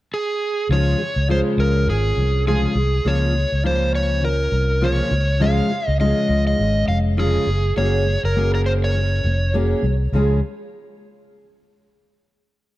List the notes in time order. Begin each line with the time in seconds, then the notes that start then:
0.14 G#4
0.69 C#2 C#3 F3 G#3 C#4 F4 C#5
0.99 C#3 F3
1.16 C#2
1.28 C#3 F3 G#3 C#4 F4 C5
1.58 C#2 A#4
1.87 G#1 C#3 F3 G#4
2.17 C2 C#3 F3
2.47 C#3 F3 G#3 C#4 F4 G#4
2.75 C2 C#3 F3
3.05 C#2 C#3 F3 A#3 C#4 F4 C#5
3.34 C#3 F3
3.52 C#2
3.63 C#3 F3 A#3 C#4 F4 C5
3.95 C#5
4.22 C#3 F3 A#4
4.51 C2 C#3 F3
4.81 C#3 F3 A#3 C#4 F4 C#5
5.11 C#2 C#3 F3
5.40 C#3 F3 G#3 C#4 F4 F5
5.69 C#3 F3
5.88 C#2 D#5
5.99 C#3 F3 G#3 C#4 F4 D#5
6.29 C#2
6.47 D#5
6.58 G#1 C#3 F3
6.88 F1 C#3 F3 F5
7.17 C#3 F3 G#3 C#4 F4 G#4
7.47 F#1 F#3 A#3
7.76 F#1 F#3 A#3 C#4 G#4 C#5
8.06 F#3 A#3
8.24 F#1 A#4
8.35 F#3 A#3 C#4 G#4
8.55 A#4
8.66 C5
8.84 C#5
8.95 F#3 A#3
9.24 F1 F#3 A#3
9.54 F#3 A#3 C#4 G#4
9.83 C2 F#3
10.12 C#2 C#3 F3 G#3 C#4 G#4